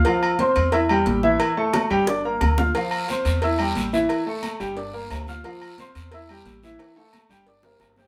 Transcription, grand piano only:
\new Staff \with { instrumentName = "Grand piano" } { \time 4/4 \key a \phrygian \tempo 4 = 178 <f f' f''>4 <c' c'' c'''>4 <e' e'' e'''>8 <g g' g''>4 <e e' e''>8~ | <e e' e''>8 <a a' a''>4 <g g' g''>8 <d' d'' d'''>8 <bes bes' bes''>4 <f' f'' f'''>8 | <f f' f''>4 <c' c'' c'''>4 <e' e'' e'''>8 <g g' g''>4 <e e' e''>8~ | <e e' e''>8 <a a' a''>4 <g g' g''>8 <d' d'' d'''>8 <bes bes' bes''>4 <f' f'' f'''>8 |
<f f' f''>4 <c' c'' c'''>4 <e' e'' e'''>8 <g g' g''>4 <e e' e''>8~ | <e e' e''>8 <a a' a''>4 <g g' g''>8 <d' d'' d'''>8 <bes bes' bes''>4 <g' g'' g'''>8 | }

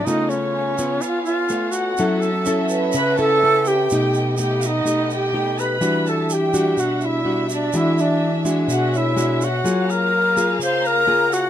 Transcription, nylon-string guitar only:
\new Staff \with { instrumentName = "Nylon-string guitar" } { \time 4/4 \key e \dorian \tempo 4 = 125 << { <a b eis'>4. <b eis'>4. <a b eis'>4 | <cis' e' a'>8 r8 <cis' e' a'>4 r8 <cis' e' a'>8 <cis' e' a'>8 r8 | <a dis' g'>4 <a dis' g'>8 r8 <a dis' g'>4 <a dis' g'>4 | <g d' fis'>4. <g d' fis'>4. <g d' fis'>4 |
<gis d' fis'>4. <gis d' fis'>4. <gis d' fis'>8 r8 | <ais eis' gis'>4 r8 <ais eis' gis'>4. <ais eis' gis'>4 | } \\ { cis2 r2 | fis2 cis2 | b,2 b,2 | e2 b,2 |
e2 b,2 | fis2 cis2 | } >> }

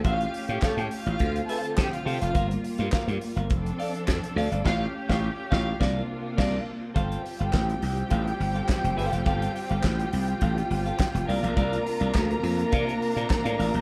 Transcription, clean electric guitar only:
\new Staff \with { instrumentName = "Clean electric guitar" } { \time 4/4 \key g \dorian \tempo 4 = 104 <g' cis'' f''>16 r8 <g' cis'' f''>16 <g' cis'' f''>16 r8 <g' cis'' f''>16 r8 <a' c'' f''>16 r8. <a' c'' f''>16 <a' c'' f''>16 | <bes' c'' f''>16 r8 <bes' c'' f''>16 <bes' c'' f''>16 r8 <bes' c'' f''>16 r8 <a' d'' f''>16 r8. <a' d'' f''>16 <a' d'' f''>16 | <g' cis'' f''>8 r16 <g' cis'' f''>8 r16 <g' cis'' f''>8 <bes' d'' f''>8 r8 <bes' d'' f''>8 r8 | <a' c'' f''>8 r16 <a' c'' f''>16 r4 <a' c'' f''>16 r8 <a' c'' f''>16 r8 <a' c'' f''>16 <a' c'' f''>16 |
<a' c'' f''>8 r16 <a' c'' f''>16 r4 <a' c'' f''>16 r8 <a' c'' f''>16 r8 <bes' d'' f''>16 <bes' d'' f''>16 | <bes' d'' f''>8 r16 <bes' d'' f''>16 r4 <bes' d'' f''>16 r8 <bes' d'' f''>16 r16 <bes' d'' f''>16 <bes' d'' f''>16 r16 | }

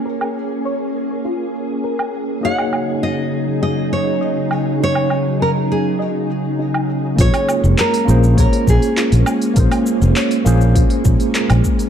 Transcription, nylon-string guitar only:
\new Staff \with { instrumentName = "Nylon-string guitar" } { \time 4/4 \key bes \minor \tempo 4 = 101 r1 | ges''4 ees''4 ees''8 des''4 r8 | des''4 bes'8 aes'2 r8 | des''4 bes'4 bes'8 aes'4 r8 |
r1 | }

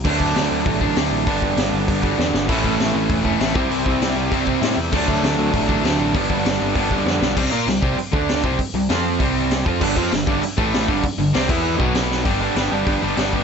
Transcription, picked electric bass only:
\new Staff \with { instrumentName = "Picked electric bass" } { \clef bass \time 4/4 \key g \major \tempo 4 = 197 d,8 d,8 d,8 d,8 a,,4 d,8 a,,8 | g,,8 g,,8 g,,8 g,,8 g,,4 e,8 g,,8 | a,,8 a,,8 a,,8 a,,8 e,,4 a,,8 c,8 | c,8 c,8 c,8 c,8 c,4 a,8 e,8 |
d,8 d,8 d,8 d,8 a,,4 d,8 a,,8 | g,,8 g,,8 g,,8 g,,8 g,,4 f,8 b,,8 | \key c \major c,8 bes,8 c,8 c,8 r8 d,4 c,8 | r8 c,8 f,4 c,4. f,8 |
g,,8 f,8 g,,8 g,,8 r8 a,,4 g,,8 | r8 g,,8 c,8 e,4 b,,4. | \key g \major g,,4 g,,8 g,,8 g,,8 g,,8 g,,4 | }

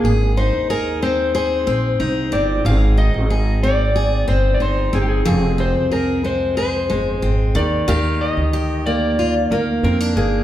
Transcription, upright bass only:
\new Staff \with { instrumentName = "Upright bass" } { \clef bass \time 4/4 \key aes \lydian \tempo 4 = 92 aes,,8. ees,4.~ ees,16 bes,,8 c,8 g,,8 | aes,,8. aes,,4.~ aes,,16 g,,8 g,,8 g,,8 | f,,8. c,4.~ c,16 g,,8 aes,,8 ees,8 | ees,8. d,4.~ d,16 d,8 f,8 g,,8 | }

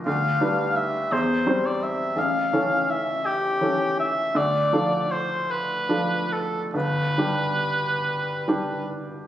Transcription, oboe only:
\new Staff \with { instrumentName = "Oboe" } { \time 6/8 \key g \mixolydian \tempo 4. = 54 f''4 e''8 c''8. d''16 e''8 | f''4 e''8 g'4 e''8 | d''4 c''8 b'4 a'8 | b'2~ b'8 r8 | }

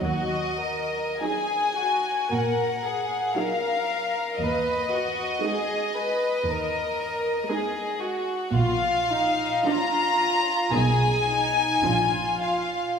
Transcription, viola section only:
\new Staff \with { instrumentName = "Viola section" } { \time 4/4 \key ees \minor \tempo 4 = 57 r4 <ges ees'>4 r4 <ges ees'>4 | r4 <aes ees'>4 r4 <aes ees'>4 | r4 <f d'>4 <ees ees'>4 <f d'>4 | }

